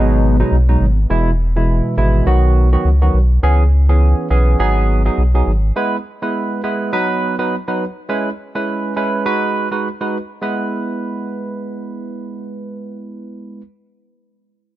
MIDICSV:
0, 0, Header, 1, 4, 480
1, 0, Start_track
1, 0, Key_signature, 4, "major"
1, 0, Tempo, 582524
1, 907, Time_signature, 4, 2, 24, 8
1, 12165, End_track
2, 0, Start_track
2, 0, Title_t, "Soft synth lead"
2, 0, Program_c, 0, 80
2, 0, Note_on_c, 0, 59, 91
2, 432, Note_off_c, 0, 59, 0
2, 12165, End_track
3, 0, Start_track
3, 0, Title_t, "Tine electric piano"
3, 0, Program_c, 1, 4
3, 0, Note_on_c, 1, 47, 96
3, 0, Note_on_c, 1, 54, 87
3, 0, Note_on_c, 1, 56, 82
3, 0, Note_on_c, 1, 63, 100
3, 292, Note_off_c, 1, 47, 0
3, 292, Note_off_c, 1, 54, 0
3, 293, Note_off_c, 1, 56, 0
3, 294, Note_off_c, 1, 63, 0
3, 324, Note_on_c, 1, 47, 79
3, 325, Note_on_c, 1, 54, 69
3, 327, Note_on_c, 1, 56, 74
3, 329, Note_on_c, 1, 63, 86
3, 455, Note_off_c, 1, 47, 0
3, 456, Note_off_c, 1, 54, 0
3, 457, Note_off_c, 1, 56, 0
3, 458, Note_off_c, 1, 63, 0
3, 564, Note_on_c, 1, 47, 77
3, 565, Note_on_c, 1, 54, 72
3, 567, Note_on_c, 1, 56, 73
3, 568, Note_on_c, 1, 63, 88
3, 695, Note_off_c, 1, 47, 0
3, 696, Note_off_c, 1, 54, 0
3, 697, Note_off_c, 1, 56, 0
3, 698, Note_off_c, 1, 63, 0
3, 905, Note_on_c, 1, 47, 89
3, 906, Note_on_c, 1, 52, 84
3, 908, Note_on_c, 1, 56, 81
3, 910, Note_on_c, 1, 64, 101
3, 1067, Note_off_c, 1, 47, 0
3, 1067, Note_off_c, 1, 52, 0
3, 1068, Note_off_c, 1, 56, 0
3, 1069, Note_off_c, 1, 64, 0
3, 1284, Note_on_c, 1, 47, 72
3, 1286, Note_on_c, 1, 52, 72
3, 1288, Note_on_c, 1, 56, 70
3, 1289, Note_on_c, 1, 64, 83
3, 1602, Note_off_c, 1, 47, 0
3, 1603, Note_off_c, 1, 52, 0
3, 1604, Note_off_c, 1, 56, 0
3, 1604, Note_off_c, 1, 64, 0
3, 1625, Note_on_c, 1, 47, 75
3, 1626, Note_on_c, 1, 52, 69
3, 1628, Note_on_c, 1, 56, 72
3, 1630, Note_on_c, 1, 64, 87
3, 1850, Note_off_c, 1, 47, 0
3, 1851, Note_off_c, 1, 52, 0
3, 1852, Note_off_c, 1, 56, 0
3, 1852, Note_off_c, 1, 64, 0
3, 1864, Note_on_c, 1, 51, 86
3, 1866, Note_on_c, 1, 54, 83
3, 1868, Note_on_c, 1, 59, 83
3, 1869, Note_on_c, 1, 66, 98
3, 2212, Note_off_c, 1, 51, 0
3, 2212, Note_off_c, 1, 54, 0
3, 2213, Note_off_c, 1, 59, 0
3, 2214, Note_off_c, 1, 66, 0
3, 2244, Note_on_c, 1, 51, 73
3, 2246, Note_on_c, 1, 54, 67
3, 2247, Note_on_c, 1, 59, 69
3, 2249, Note_on_c, 1, 66, 83
3, 2376, Note_off_c, 1, 51, 0
3, 2377, Note_off_c, 1, 54, 0
3, 2377, Note_off_c, 1, 59, 0
3, 2378, Note_off_c, 1, 66, 0
3, 2484, Note_on_c, 1, 51, 77
3, 2485, Note_on_c, 1, 54, 71
3, 2487, Note_on_c, 1, 59, 69
3, 2489, Note_on_c, 1, 66, 81
3, 2616, Note_off_c, 1, 51, 0
3, 2616, Note_off_c, 1, 54, 0
3, 2617, Note_off_c, 1, 59, 0
3, 2618, Note_off_c, 1, 66, 0
3, 2825, Note_on_c, 1, 52, 88
3, 2826, Note_on_c, 1, 59, 84
3, 2828, Note_on_c, 1, 61, 85
3, 2830, Note_on_c, 1, 68, 99
3, 2987, Note_off_c, 1, 52, 0
3, 2987, Note_off_c, 1, 59, 0
3, 2988, Note_off_c, 1, 61, 0
3, 2989, Note_off_c, 1, 68, 0
3, 3204, Note_on_c, 1, 52, 75
3, 3206, Note_on_c, 1, 59, 68
3, 3207, Note_on_c, 1, 61, 71
3, 3209, Note_on_c, 1, 68, 81
3, 3522, Note_off_c, 1, 52, 0
3, 3523, Note_off_c, 1, 59, 0
3, 3523, Note_off_c, 1, 61, 0
3, 3524, Note_off_c, 1, 68, 0
3, 3545, Note_on_c, 1, 52, 74
3, 3547, Note_on_c, 1, 59, 69
3, 3548, Note_on_c, 1, 61, 67
3, 3550, Note_on_c, 1, 68, 83
3, 3770, Note_off_c, 1, 52, 0
3, 3771, Note_off_c, 1, 59, 0
3, 3772, Note_off_c, 1, 61, 0
3, 3772, Note_off_c, 1, 68, 0
3, 3785, Note_on_c, 1, 54, 91
3, 3786, Note_on_c, 1, 59, 84
3, 3788, Note_on_c, 1, 63, 76
3, 3790, Note_on_c, 1, 68, 100
3, 4132, Note_off_c, 1, 54, 0
3, 4133, Note_off_c, 1, 59, 0
3, 4134, Note_off_c, 1, 63, 0
3, 4134, Note_off_c, 1, 68, 0
3, 4164, Note_on_c, 1, 54, 74
3, 4166, Note_on_c, 1, 59, 66
3, 4167, Note_on_c, 1, 63, 68
3, 4169, Note_on_c, 1, 68, 84
3, 4296, Note_off_c, 1, 54, 0
3, 4296, Note_off_c, 1, 59, 0
3, 4297, Note_off_c, 1, 63, 0
3, 4298, Note_off_c, 1, 68, 0
3, 4404, Note_on_c, 1, 54, 73
3, 4405, Note_on_c, 1, 59, 70
3, 4407, Note_on_c, 1, 63, 69
3, 4408, Note_on_c, 1, 68, 82
3, 4535, Note_off_c, 1, 54, 0
3, 4536, Note_off_c, 1, 59, 0
3, 4537, Note_off_c, 1, 63, 0
3, 4538, Note_off_c, 1, 68, 0
3, 4745, Note_on_c, 1, 56, 91
3, 4746, Note_on_c, 1, 59, 81
3, 4748, Note_on_c, 1, 64, 80
3, 4750, Note_on_c, 1, 71, 102
3, 4907, Note_off_c, 1, 56, 0
3, 4907, Note_off_c, 1, 59, 0
3, 4908, Note_off_c, 1, 64, 0
3, 4909, Note_off_c, 1, 71, 0
3, 5125, Note_on_c, 1, 56, 76
3, 5127, Note_on_c, 1, 59, 67
3, 5128, Note_on_c, 1, 64, 68
3, 5130, Note_on_c, 1, 71, 81
3, 5442, Note_off_c, 1, 56, 0
3, 5443, Note_off_c, 1, 59, 0
3, 5444, Note_off_c, 1, 64, 0
3, 5445, Note_off_c, 1, 71, 0
3, 5466, Note_on_c, 1, 56, 76
3, 5468, Note_on_c, 1, 59, 68
3, 5469, Note_on_c, 1, 64, 70
3, 5471, Note_on_c, 1, 71, 80
3, 5690, Note_off_c, 1, 56, 0
3, 5691, Note_off_c, 1, 59, 0
3, 5692, Note_off_c, 1, 64, 0
3, 5693, Note_off_c, 1, 71, 0
3, 5706, Note_on_c, 1, 54, 84
3, 5708, Note_on_c, 1, 59, 76
3, 5709, Note_on_c, 1, 63, 84
3, 5711, Note_on_c, 1, 71, 95
3, 6053, Note_off_c, 1, 54, 0
3, 6053, Note_off_c, 1, 59, 0
3, 6054, Note_off_c, 1, 63, 0
3, 6055, Note_off_c, 1, 71, 0
3, 6085, Note_on_c, 1, 54, 72
3, 6086, Note_on_c, 1, 59, 70
3, 6088, Note_on_c, 1, 63, 69
3, 6090, Note_on_c, 1, 71, 82
3, 6216, Note_off_c, 1, 54, 0
3, 6217, Note_off_c, 1, 59, 0
3, 6217, Note_off_c, 1, 63, 0
3, 6218, Note_off_c, 1, 71, 0
3, 6324, Note_on_c, 1, 54, 71
3, 6326, Note_on_c, 1, 59, 68
3, 6327, Note_on_c, 1, 63, 68
3, 6329, Note_on_c, 1, 71, 83
3, 6456, Note_off_c, 1, 54, 0
3, 6457, Note_off_c, 1, 59, 0
3, 6457, Note_off_c, 1, 63, 0
3, 6458, Note_off_c, 1, 71, 0
3, 6665, Note_on_c, 1, 56, 92
3, 6667, Note_on_c, 1, 61, 81
3, 6668, Note_on_c, 1, 64, 81
3, 6670, Note_on_c, 1, 71, 97
3, 6827, Note_off_c, 1, 56, 0
3, 6828, Note_off_c, 1, 61, 0
3, 6828, Note_off_c, 1, 64, 0
3, 6829, Note_off_c, 1, 71, 0
3, 7044, Note_on_c, 1, 56, 73
3, 7046, Note_on_c, 1, 61, 66
3, 7047, Note_on_c, 1, 64, 68
3, 7049, Note_on_c, 1, 71, 85
3, 7362, Note_off_c, 1, 56, 0
3, 7363, Note_off_c, 1, 61, 0
3, 7363, Note_off_c, 1, 64, 0
3, 7364, Note_off_c, 1, 71, 0
3, 7385, Note_on_c, 1, 56, 73
3, 7386, Note_on_c, 1, 61, 69
3, 7388, Note_on_c, 1, 64, 69
3, 7389, Note_on_c, 1, 71, 83
3, 7610, Note_off_c, 1, 56, 0
3, 7611, Note_off_c, 1, 61, 0
3, 7611, Note_off_c, 1, 64, 0
3, 7612, Note_off_c, 1, 71, 0
3, 7624, Note_on_c, 1, 56, 83
3, 7626, Note_on_c, 1, 63, 77
3, 7628, Note_on_c, 1, 66, 79
3, 7629, Note_on_c, 1, 71, 93
3, 7972, Note_off_c, 1, 56, 0
3, 7973, Note_off_c, 1, 63, 0
3, 7973, Note_off_c, 1, 66, 0
3, 7974, Note_off_c, 1, 71, 0
3, 8004, Note_on_c, 1, 56, 71
3, 8005, Note_on_c, 1, 63, 65
3, 8007, Note_on_c, 1, 66, 65
3, 8009, Note_on_c, 1, 71, 79
3, 8135, Note_off_c, 1, 56, 0
3, 8136, Note_off_c, 1, 63, 0
3, 8137, Note_off_c, 1, 66, 0
3, 8138, Note_off_c, 1, 71, 0
3, 8244, Note_on_c, 1, 56, 69
3, 8246, Note_on_c, 1, 63, 67
3, 8247, Note_on_c, 1, 66, 65
3, 8249, Note_on_c, 1, 71, 82
3, 8375, Note_off_c, 1, 56, 0
3, 8376, Note_off_c, 1, 63, 0
3, 8377, Note_off_c, 1, 66, 0
3, 8378, Note_off_c, 1, 71, 0
3, 8583, Note_on_c, 1, 56, 84
3, 8586, Note_on_c, 1, 59, 76
3, 8589, Note_on_c, 1, 64, 71
3, 8591, Note_on_c, 1, 71, 87
3, 11211, Note_off_c, 1, 56, 0
3, 11214, Note_off_c, 1, 59, 0
3, 11216, Note_off_c, 1, 64, 0
3, 11219, Note_off_c, 1, 71, 0
3, 12165, End_track
4, 0, Start_track
4, 0, Title_t, "Sub bass"
4, 0, Program_c, 2, 38
4, 0, Note_on_c, 2, 32, 102
4, 362, Note_off_c, 2, 32, 0
4, 427, Note_on_c, 2, 35, 97
4, 635, Note_off_c, 2, 35, 0
4, 668, Note_on_c, 2, 32, 95
4, 875, Note_off_c, 2, 32, 0
4, 908, Note_on_c, 2, 28, 113
4, 1496, Note_off_c, 2, 28, 0
4, 1627, Note_on_c, 2, 32, 101
4, 1834, Note_off_c, 2, 32, 0
4, 1868, Note_on_c, 2, 35, 104
4, 2282, Note_off_c, 2, 35, 0
4, 2347, Note_on_c, 2, 37, 87
4, 2555, Note_off_c, 2, 37, 0
4, 2587, Note_on_c, 2, 35, 95
4, 2795, Note_off_c, 2, 35, 0
4, 2827, Note_on_c, 2, 37, 105
4, 3415, Note_off_c, 2, 37, 0
4, 3548, Note_on_c, 2, 35, 101
4, 3755, Note_off_c, 2, 35, 0
4, 3788, Note_on_c, 2, 32, 98
4, 4202, Note_off_c, 2, 32, 0
4, 4268, Note_on_c, 2, 35, 91
4, 4475, Note_off_c, 2, 35, 0
4, 4507, Note_on_c, 2, 32, 87
4, 4715, Note_off_c, 2, 32, 0
4, 12165, End_track
0, 0, End_of_file